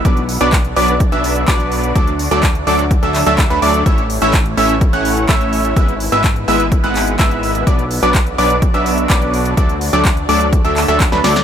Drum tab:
HH |xxoxxxoxxxoxxxox|xxoxxxoxxxoxxxox|xxoxxxoxxxoxxxox|xxoxxxoxxxoxxxox|
CP |----x-------x---|----x-----x-x---|----x-------x---|----x-----x-x---|
SD |----------------|----------------|----------------|----------------|
BD |o---o---o---o---|o---o---o---o---|o---o---o---o---|o---o---o---o---|

HH |xxoxxxoxxxoxxxox|xxoxxxoxxxoxxxox|
CP |----x-------x---|----x-----x-x---|
SD |----------------|-------------ooo|
BD |o---o---o---o---|o---o---o---o---|